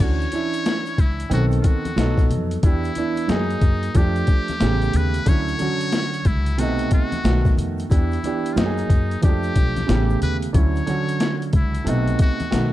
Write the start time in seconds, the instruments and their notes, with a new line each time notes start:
0.00 upright bass D2, grand piano E3 C#4 D4 F#4, muted trumpet C#5, kick, closed hi-hat, crash, shaker
0.21 closed hi-hat, shaker
0.32 grand piano E3 C#4 D4 E4, closed hi-hat, high conga, shaker
0.54 closed hi-hat, shaker
0.66 snare, closed hi-hat, shaker
0.86 closed hi-hat, shaker
0.98 upright bass C#2, muted trumpet E4, kick, closed hi-hat, low conga, shaker
1.19 closed hi-hat, shaker
1.30 upright bass B1, grand piano D#3 B3 C4 A4, muted trumpet F#4, closed hi-hat, shaker
1.51 closed hi-hat, shaker
1.61 muted trumpet F4, kick, closed hi-hat, shaker
1.66 muted trumpet F#4
1.85 closed hi-hat, high conga, shaker
1.96 upright bass B1, grand piano F#3 B3 D#4 A4, snare, closed hi-hat, shaker
2.18 kick, snare, closed hi-hat, shaker
2.30 upright bass F2, closed hi-hat, low conga, shaker
2.51 closed hi-hat, shaker
2.63 upright bass E2, grand piano E3 B3 D4 G4, muted trumpet E4, kick, closed hi-hat, shaker
2.84 closed hi-hat, shaker
2.95 grand piano E3 B3 D4 E4, closed hi-hat, high conga, shaker
3.16 closed hi-hat, shaker
3.28 upright bass F#2, grand piano F#3 G#3 D#4 G#4, muted trumpet D#4, snare, closed hi-hat, shaker
3.35 grand piano A#3
3.50 closed hi-hat, shaker
3.61 upright bass F#2, kick, closed hi-hat, low conga, shaker
3.83 closed hi-hat, shaker
3.94 upright bass F2, grand piano F3 A3 D4 G4, muted trumpet G4, kick, closed hi-hat, shaker
4.16 closed hi-hat, shaker
4.27 kick, closed hi-hat, shaker
4.48 snare, closed hi-hat, high conga, shaker
4.60 upright bass A1, grand piano C#3 A3 B3 G4, snare, closed hi-hat, shaker
4.82 closed hi-hat, shaker
4.93 upright bass D#2, muted trumpet B4, closed hi-hat, low conga, shaker
5.14 closed hi-hat, shaker
5.26 upright bass D2, grand piano D3 F#3 C#4 E4, muted trumpet C#5, kick, closed hi-hat, shaker
5.48 closed hi-hat, shaker
5.59 grand piano D3 F#3 C#4 F#4, closed hi-hat, high conga, shaker
5.81 closed hi-hat, shaker
5.92 snare, closed hi-hat, shaker
6.13 closed hi-hat, shaker
6.25 upright bass C#2, muted trumpet E4, kick, closed hi-hat, low conga, shaker
6.46 closed hi-hat, shaker
6.58 upright bass B1, grand piano C3 A3 B3 D#4, muted trumpet F#4, closed hi-hat, shaker
6.78 closed hi-hat, shaker
6.91 muted trumpet F#4, kick, closed hi-hat, shaker
7.12 closed hi-hat, high conga, shaker
7.24 upright bass B1, grand piano D#3 A3 B3 F#4, snare, closed hi-hat, shaker
7.45 kick, snare, closed hi-hat, shaker
7.57 upright bass F2, closed hi-hat, low conga, shaker
7.78 closed hi-hat, shaker
7.89 upright bass E2, grand piano E3 B3 D4 G4, muted trumpet E4, kick, closed hi-hat, shaker
8.11 closed hi-hat, shaker
8.23 grand piano E3 B3 D4 G4, closed hi-hat, high conga, shaker
8.45 closed hi-hat, shaker
8.53 upright bass F#2, grand piano F#3, muted trumpet F4, shaker
8.57 grand piano A#3 D#4 G4, muted trumpet D#4, snare, closed hi-hat
8.66 grand piano G#4
8.77 closed hi-hat, shaker
8.90 upright bass F#2, kick, closed hi-hat, low conga, shaker
9.11 closed hi-hat, shaker
9.22 upright bass F2, grand piano F3 G#3 D4 G4, muted trumpet G4, kick, closed hi-hat, shaker
9.29 grand piano A3
9.43 closed hi-hat, shaker
9.56 upright bass B1, kick, closed hi-hat, shaker
9.76 snare, closed hi-hat, high conga, shaker
9.87 upright bass A1, grand piano C#3 A3 B3 G4, snare, closed hi-hat, shaker
10.10 shaker
10.22 upright bass D#2, muted trumpet B4, closed hi-hat, low conga, shaker
10.42 closed hi-hat, shaker
10.53 upright bass D2, grand piano D3 F#3 C#4 E4, muted trumpet C#5, kick, closed hi-hat, shaker
10.76 closed hi-hat, shaker
10.86 grand piano D3 F#3 C#4 F#4, closed hi-hat, high conga, shaker
11.08 closed hi-hat, shaker
11.20 snare, closed hi-hat, shaker
11.42 closed hi-hat, shaker
11.53 upright bass C#2, muted trumpet E4, kick, closed hi-hat, low conga, shaker
11.75 closed hi-hat, shaker
11.84 upright bass B1, grand piano C3 A3 B3 D#4, closed hi-hat, shaker
11.89 muted trumpet F#4
12.08 closed hi-hat, shaker
12.19 muted trumpet F#4, kick, closed hi-hat, shaker
12.40 closed hi-hat, high conga, shaker
12.51 upright bass B1, grand piano D#3 A3 B3 F#4, snare, closed hi-hat, shaker